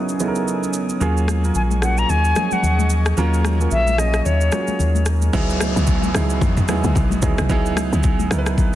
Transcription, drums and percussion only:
0.09 shaker
0.20 shaker
0.35 shaker
0.48 shaker
0.63 shaker
0.73 shaker
0.89 shaker
1.01 low conga, shaker
1.17 shaker
1.28 cross-stick, high conga, shaker
1.44 shaker
1.55 low conga, shaker
1.71 high conga, shaker
1.82 cross-stick, shaker
1.98 shaker
2.09 low conga, shaker
2.25 shaker
2.36 cross-stick, high conga, shaker
2.51 high conga, shaker
2.63 low conga, shaker
2.79 high conga, shaker
2.90 shaker
3.06 cross-stick, shaker
3.17 low conga, shaker
3.34 shaker
3.44 cross-stick, high conga, shaker
3.61 shaker
3.71 low conga, shaker
3.87 high conga, shaker
3.98 cross-stick, shaker
4.14 cross-stick, shaker
4.26 low conga, shaker
4.41 shaker
4.52 cross-stick, high conga, shaker
4.67 high conga, shaker
4.79 low conga, shaker
4.95 high conga, shaker
5.06 cross-stick, shaker
5.22 high conga, shaker
5.33 kick, low conga, shaker
5.50 shaker
5.60 cross-stick, high conga, shaker
5.77 shaker
5.87 kick, low conga, shaker
6.03 high conga, shaker
6.15 cross-stick, shaker
6.30 shaker
6.41 kick, low conga, shaker
6.57 mid tom, shaker
6.68 cross-stick, high conga, shaker
6.84 high conga, shaker
6.95 kick, low conga, shaker
7.11 high conga, shaker
7.22 kick, shaker
7.38 cross-stick, high conga, shaker
7.50 kick, low conga, shaker
7.66 shaker
7.77 cross-stick, high conga, shaker
7.93 shaker
8.03 kick, low conga, shaker
8.19 high conga, shaker
8.31 cross-stick, shaker
8.46 cross-stick, shaker
8.58 kick, low conga, shaker

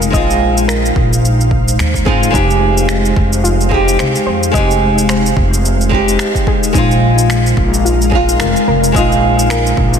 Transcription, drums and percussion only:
0.02 cabasa
0.13 kick, cabasa
0.30 cabasa
0.58 cabasa
0.69 finger snap, cabasa
0.85 cabasa
0.96 kick
1.13 cabasa
1.25 cabasa
1.41 cabasa
1.51 kick
1.68 cabasa
1.79 finger snap, cabasa
1.94 kick, cabasa
2.06 kick
2.23 cabasa
2.34 kick, cabasa
2.51 cabasa
2.78 cabasa
2.89 finger snap, cabasa
3.05 cabasa
3.16 kick
3.33 cabasa
3.45 cabasa
3.61 cabasa
3.72 kick
3.88 cabasa
3.99 finger snap, cabasa
4.15 cabasa
4.43 cabasa
4.54 kick, cabasa
4.71 cabasa
4.98 cabasa
5.09 finger snap, cabasa
5.26 cabasa
5.37 kick
5.54 cabasa
5.65 cabasa
5.81 cabasa
5.92 kick
6.08 cabasa
6.19 finger snap, cabasa
6.35 kick, cabasa
6.47 kick
6.63 cabasa
6.74 kick, cabasa
6.91 cabasa
7.18 cabasa
7.30 finger snap, cabasa
7.46 cabasa
7.57 kick
7.74 cabasa
7.86 cabasa
8.02 cabasa
8.12 kick
8.29 cabasa
8.40 finger snap, cabasa
8.56 cabasa
8.84 cabasa
8.95 kick, cabasa
9.12 cabasa
9.39 cabasa
9.50 finger snap, cabasa
9.67 cabasa
9.77 kick
9.94 cabasa

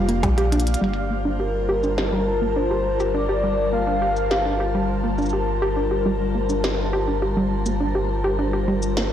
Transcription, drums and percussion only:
0.09 closed hi-hat
0.23 kick, closed hi-hat, percussion blips
0.38 closed hi-hat
0.52 closed hi-hat
0.60 closed hi-hat
0.67 closed hi-hat
0.74 closed hi-hat
0.84 closed hi-hat
0.94 closed hi-hat
1.83 shaker
1.98 snare
3.00 shaker
4.16 shaker
4.31 snare
5.18 shaker
5.22 shaker
5.26 shaker
5.29 shaker
6.49 shaker
6.64 snare
7.66 shaker
8.82 shaker
8.97 snare

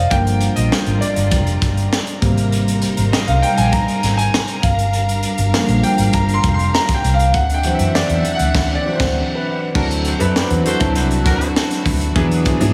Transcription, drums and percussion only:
0.11 kick, closed hi-hat
0.27 closed hi-hat
0.41 closed hi-hat
0.56 closed hi-hat
0.72 snare
0.86 closed hi-hat
1.02 closed hi-hat
1.16 closed hi-hat
1.31 kick, closed hi-hat
1.47 closed hi-hat
1.62 kick, snare, closed hi-hat
1.77 closed hi-hat
1.93 snare
2.07 closed hi-hat
2.22 kick, closed hi-hat
2.38 closed hi-hat
2.52 closed hi-hat
2.68 closed hi-hat
2.82 closed hi-hat
2.97 closed hi-hat
3.13 snare
3.28 closed hi-hat
3.43 closed hi-hat
3.58 closed hi-hat
3.73 kick, closed hi-hat
3.88 closed hi-hat
4.03 snare, closed hi-hat
4.19 closed hi-hat
4.34 snare
4.48 closed hi-hat
4.63 kick, closed hi-hat
4.79 closed hi-hat
4.93 closed hi-hat
5.09 closed hi-hat
5.23 closed hi-hat
5.38 closed hi-hat
5.54 snare
5.68 closed hi-hat
5.84 closed hi-hat
5.98 closed hi-hat
6.13 kick, closed hi-hat
6.29 closed hi-hat
6.44 kick, closed hi-hat
6.59 closed hi-hat
6.75 snare
6.89 kick, snare, closed hi-hat
7.04 closed hi-hat
7.19 closed hi-hat
7.34 kick, closed hi-hat
7.50 closed hi-hat
7.63 closed hi-hat
7.79 closed hi-hat
7.95 snare
8.10 closed hi-hat
8.25 closed hi-hat
8.39 closed hi-hat
8.54 kick, snare, crash
9.00 kick, snare, crash
9.75 kick, crash
9.91 closed hi-hat
10.05 closed hi-hat
10.20 closed hi-hat
10.36 snare
10.50 closed hi-hat
10.66 closed hi-hat
10.80 kick, closed hi-hat
10.95 closed hi-hat
11.11 closed hi-hat
11.26 kick, snare, closed hi-hat
11.41 closed hi-hat
11.56 snare
11.71 snare, closed hi-hat
11.86 kick, open hi-hat
12.01 closed hi-hat
12.16 kick, closed hi-hat
12.31 closed hi-hat
12.45 kick, closed hi-hat
12.61 closed hi-hat

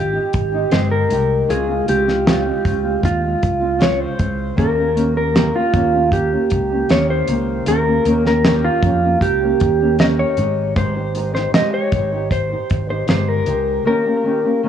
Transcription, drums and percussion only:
0.33 kick, closed hi-hat
0.72 snare, closed hi-hat
1.10 closed hi-hat
1.50 closed hi-hat
1.88 closed hi-hat
2.08 snare
2.27 snare, closed hi-hat
2.65 kick, closed hi-hat
3.03 kick, closed hi-hat
3.43 kick, closed hi-hat
3.81 snare, closed hi-hat
4.19 kick, closed hi-hat
4.58 kick, closed hi-hat
4.97 closed hi-hat
5.36 snare, closed hi-hat
5.74 kick, closed hi-hat
6.12 kick, closed hi-hat
6.50 kick, closed hi-hat
6.89 snare, closed hi-hat
7.28 closed hi-hat
7.66 closed hi-hat
8.05 closed hi-hat
8.25 snare
8.45 snare, closed hi-hat
8.83 kick, closed hi-hat
9.21 kick, closed hi-hat
9.60 kick, closed hi-hat
9.99 snare, closed hi-hat
10.37 closed hi-hat
10.76 kick, closed hi-hat
11.15 closed hi-hat
11.35 snare
11.54 snare, closed hi-hat
11.92 kick, closed hi-hat
12.31 kick, closed hi-hat
12.70 kick, closed hi-hat
13.08 snare, closed hi-hat
13.46 closed hi-hat

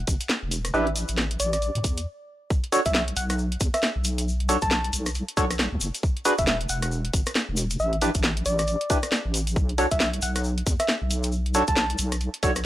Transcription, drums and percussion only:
0.07 kick, open hi-hat, shaker
0.21 closed hi-hat, shaker
0.29 snare, shaker
0.51 open hi-hat, shaker
0.65 cross-stick, closed hi-hat, shaker
0.74 shaker
0.87 closed hi-hat
0.96 open hi-hat, shaker
1.08 closed hi-hat, shaker
1.18 snare, shaker
1.31 closed hi-hat
1.40 open hi-hat, shaker
1.53 cross-stick, closed hi-hat, shaker
1.62 open hi-hat, shaker
1.75 closed hi-hat
1.84 kick, open hi-hat, shaker
1.97 closed hi-hat, shaker
2.50 kick, shaker
2.64 closed hi-hat
2.72 open hi-hat, shaker
2.85 kick, closed hi-hat, shaker
2.94 snare, shaker
3.08 closed hi-hat
3.16 open hi-hat, shaker
3.30 cross-stick, closed hi-hat, shaker
3.38 shaker
3.52 closed hi-hat
3.60 kick, open hi-hat, shaker
3.74 cross-stick, closed hi-hat, shaker
3.82 snare, shaker
4.04 open hi-hat, shaker
4.18 closed hi-hat, shaker
4.28 shaker
4.40 closed hi-hat
4.49 open hi-hat, shaker
4.62 kick, closed hi-hat, shaker
4.71 snare, shaker
4.84 closed hi-hat
4.93 open hi-hat, shaker
5.06 cross-stick, closed hi-hat, shaker
5.15 open hi-hat, shaker
5.28 closed hi-hat
5.37 kick, open hi-hat, shaker
5.51 cross-stick, closed hi-hat, shaker
5.59 snare, shaker
5.81 open hi-hat, shaker
5.95 closed hi-hat, shaker
6.03 kick, shaker
6.17 closed hi-hat
6.25 open hi-hat, shaker
6.38 kick, closed hi-hat, shaker
6.47 snare, shaker
6.61 closed hi-hat
6.69 open hi-hat, shaker
6.82 cross-stick, closed hi-hat, shaker
6.91 shaker
7.05 closed hi-hat
7.13 kick, open hi-hat, shaker
7.26 cross-stick, closed hi-hat, shaker
7.35 snare, shaker
7.57 open hi-hat, shaker
7.70 closed hi-hat, shaker
7.79 shaker
7.93 closed hi-hat
8.01 open hi-hat, shaker
8.15 kick, closed hi-hat, shaker
8.23 snare, shaker
8.37 closed hi-hat
8.45 open hi-hat, shaker
8.59 cross-stick, closed hi-hat, shaker
8.67 open hi-hat, shaker
8.81 closed hi-hat
8.90 kick, open hi-hat, shaker
9.03 cross-stick, closed hi-hat, shaker
9.12 snare, shaker
9.34 open hi-hat, shaker
9.47 closed hi-hat, shaker
9.56 kick, shaker
9.69 closed hi-hat
9.78 open hi-hat, shaker
9.91 kick, closed hi-hat, shaker
10.00 snare, shaker
10.13 closed hi-hat
10.22 open hi-hat, shaker
10.36 cross-stick, closed hi-hat, shaker
10.44 shaker
10.58 closed hi-hat
10.67 kick, open hi-hat, shaker
10.79 cross-stick, closed hi-hat, shaker
10.88 snare, shaker
11.10 open hi-hat, shaker
11.23 closed hi-hat, shaker
11.32 shaker
11.46 closed hi-hat
11.54 open hi-hat, shaker
11.67 kick, closed hi-hat, shaker
11.76 snare, shaker
11.90 closed hi-hat
11.98 open hi-hat, shaker
12.12 cross-stick, closed hi-hat, shaker
12.21 open hi-hat, shaker
12.34 closed hi-hat
12.43 kick, open hi-hat, shaker
12.56 cross-stick, closed hi-hat, shaker

